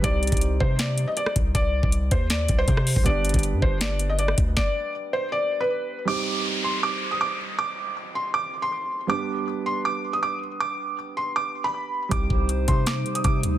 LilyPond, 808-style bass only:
\new Staff \with { instrumentName = "808-style bass" } { \clef bass \time 4/4 \key c \minor \tempo 4 = 159 c,8. c,8. c4~ c16 r8. c,8 | c,8. c,8. ees,4 c,8 c8. c,16 | g,,8. g,,8 g,16 g,,2 d,8 | r1 |
r1 | r1 | r1 | r1 |
c,8 c,4 c4 r8 c8 d,8 | }